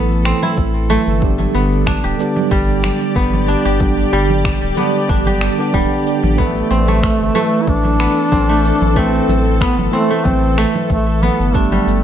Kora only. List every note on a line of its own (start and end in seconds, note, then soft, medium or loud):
0.00 0.89 A3 loud
0.00 0.31 B3 medium
0.00 0.38 E4 medium
0.25 1.61 C4 medium
0.43 1.99 E4 medium
0.90 2.90 A3 loud
1.55 3.16 B3 medium
1.87 3.48 D4 medium
2.04 3.45 G4 medium
2.51 4.12 G3 loud
3.16 4.77 B3 medium
3.48 5.09 D4 medium
3.65 5.06 G4 medium
4.13 5.73 G3 medium
4.77 6.38 B3 medium
5.09 6.77 D4 medium
5.27 6.68 G4 medium
5.74 6.44 G3 medium
6.38 6.77 B3 medium
6.71 8.06 C4 medium
6.88 7.35 A3 medium
7.35 8.49 A3 loud
8.00 8.38 B3 medium
8.32 9.67 C4 medium
8.49 8.96 A3 medium
8.96 10.10 A3 loud
9.61 9.99 B3 medium
9.93 11.29 C4 medium
10.10 10.57 A3 medium
10.58 12.04 A3 loud
11.23 12.04 B3 medium
11.55 12.04 D4 medium
11.72 12.04 G3 medium